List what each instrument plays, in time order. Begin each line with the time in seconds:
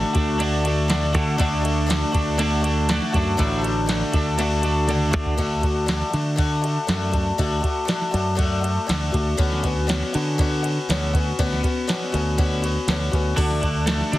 Already playing: twelve-string acoustic guitar D3 A3 D4 F#4, clean electric guitar D3 A3 D4 F#4
0.14 fingered electric bass D2, twelve-string acoustic guitar A3 D4 F#4, kick, ride
0.39 twelve-string acoustic guitar D3 A3 D4 F#4, ride
0.65 twelve-string acoustic guitar A3 D4 F#4, ride
0.88 twelve-string acoustic guitar D3 A3 D4 F#4, snare, ride
1.03 snare
1.13 fingered electric bass D3, twelve-string acoustic guitar A3 D4 F#4, kick, ride
1.38 fingered electric bass D2, twelve-string acoustic guitar D3 A3 D4 F#4, kick, ride
1.62 twelve-string acoustic guitar A3 D4 F#4, ride
1.86 twelve-string acoustic guitar D3 A3 D4 F#4, ride
1.91 snare
2.12 fingered electric bass D2, twelve-string acoustic guitar A3 D4 F#4, kick, ride
2.38 twelve-string acoustic guitar D3 A3 D4 F#4, ride
2.61 twelve-string acoustic guitar A3 D4 F#4, ride
2.88 twelve-string acoustic guitar D3 A3 D4 F#4, snare, ride
3.02 snare
3.12 fingered electric bass F#2, twelve-string acoustic guitar A3 D4 F#4, kick, ride
3.37 fingered electric bass A1, twelve-string acoustic guitar D3 A3 D4 F#4, kick, ride
3.62 twelve-string acoustic guitar A3 D4 F#4, ride
3.86 twelve-string acoustic guitar D3 A3 D4 F#4, snare, ride
4.12 fingered electric bass D2, twelve-string acoustic guitar A3 D4 F#4, kick, ride
4.38 twelve-string acoustic guitar D3 A3 D4 F#4, ride
4.63 twelve-string acoustic guitar A3 D4 F#4, ride
4.87 twelve-string acoustic guitar D3 A3 D4 F#4, high tom, ride
5.11 fingered electric bass D3, clean electric guitar A3, twelve-string acoustic guitar D4 F#4, kick, ride
5.26 floor tom
5.37 fingered electric bass D2, twelve-string acoustic guitar D3 A3 D4 F#4, kick, ride
5.61 twelve-string acoustic guitar A3 D4 F#4, kick, ride
5.86 twelve-string acoustic guitar D3 A3 D4 F#4, snare, ride
6.02 snare
6.10 fingered electric bass D3, twelve-string acoustic guitar A3 D4 F#4, snare, ride
6.36 twelve-string acoustic guitar D3 A3 D4 F#4, kick, ride
6.62 twelve-string acoustic guitar A3 D4 F#4, ride
6.87 fingered electric bass F#2, twelve-string acoustic guitar D3 A3 D4 F#4, snare, ride
7.12 twelve-string acoustic guitar A3 D4 F#4, kick, ride
7.38 fingered electric bass D2, twelve-string acoustic guitar D3 A3 D4 F#4, kick, ride
7.61 twelve-string acoustic guitar A3 D4 F#4, kick, ride
7.85 twelve-string acoustic guitar D3 A3 D4 F#4, snare, ride
8.02 snare
8.11 fingered electric bass F#2, twelve-string acoustic guitar A3 D4 F#4, ride
8.35 twelve-string acoustic guitar D3 A3 D4 F#4, kick, ride
8.61 twelve-string acoustic guitar A3 D4 F#4, ride
8.87 fingered electric bass D2, twelve-string acoustic guitar D3 A3 D4 F#4, snare, ride
9.12 fingered electric bass D2, twelve-string acoustic guitar A3 D4 F#4, kick, ride
9.37 fingered electric bass D2, twelve-string acoustic guitar D3 B3 C#4 F#4, kick, ride
9.52 snare
9.63 twelve-string acoustic guitar B3 C#4 F#4, kick, ride
9.87 twelve-string acoustic guitar D3 B3 C#4 F#4, snare, ride
10.03 snare
10.13 fingered electric bass D3, twelve-string acoustic guitar B3 C#4 F#4, ride
10.38 twelve-string acoustic guitar D3 B3 C#4 F#4, kick, ride
10.63 twelve-string acoustic guitar B3 C#4 F#4, ride
10.89 fingered electric bass D2, twelve-string acoustic guitar D3 B3 C#4 F#4, snare, ride
11.13 twelve-string acoustic guitar B3 C#4 F#4, kick, ride
11.39 fingered electric bass D2, twelve-string acoustic guitar D3 B3 C#4 F#4, kick, ride
11.53 snare
11.63 twelve-string acoustic guitar B3 C#4 F#4, kick, ride
11.87 twelve-string acoustic guitar D3 B3 C#4 F#4, snare, ride
12.12 fingered electric bass D2, twelve-string acoustic guitar B3 C#4 F#4, ride
12.38 twelve-string acoustic guitar D3 B3 C#4 F#4, kick, ride
12.62 twelve-string acoustic guitar B3 C#4 F#4, ride
12.87 fingered electric bass D2, twelve-string acoustic guitar D3 B3 C#4 F#4, snare, ride
13.11 fingered electric bass D2, twelve-string acoustic guitar B3 C#4 F#4, kick, ride
13.37 fingered electric bass D2, twelve-string acoustic guitar D3 A3 D4 F#4, kick, crash
13.51 snare
13.61 clean electric guitar D3, twelve-string acoustic guitar D4 F#4, kick, ride
13.66 twelve-string acoustic guitar A3
13.87 twelve-string acoustic guitar D3 A3 D4 F#4, snare, ride
14.01 snare
14.12 fingered electric bass D3, twelve-string acoustic guitar A3 D4 F#4, snare, ride